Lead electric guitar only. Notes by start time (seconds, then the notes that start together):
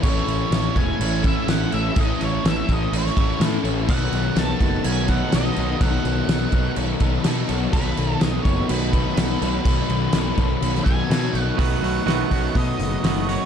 0.03 C#5
0.77 G#5
1.26 E5
1.50 F#5
1.74 E5
2.00 D#5
2.25 C#5
2.48 E5
2.73 D#5
2.98 C#5
3.90 F#5
4.39 A5
4.86 G#5
5.10 F#5
5.34 D#5
5.81 F#5
7.73 B4
8.21 D#5
8.43 C#5
8.67 B4
10.84 G#5
11.40 F#5
11.59 F#5
12.57 D#5
13.29 C#5